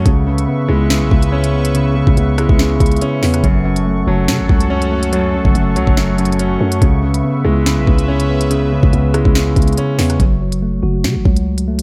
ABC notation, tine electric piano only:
X:1
M:4/4
L:1/8
Q:1/4=142
K:C#m
V:1 name="Tine electric piano" clef=bass
C, C, B, E2 C,2 B, | C, C, B, E2 C,2 B, | F, F, A, F2 F,2 A, | F, F, A, F2 F,2 A, |
C, C, B, E2 C,2 B, | C, C, B, E2 C,2 B, | F, F, A, F2 F,2 A, |]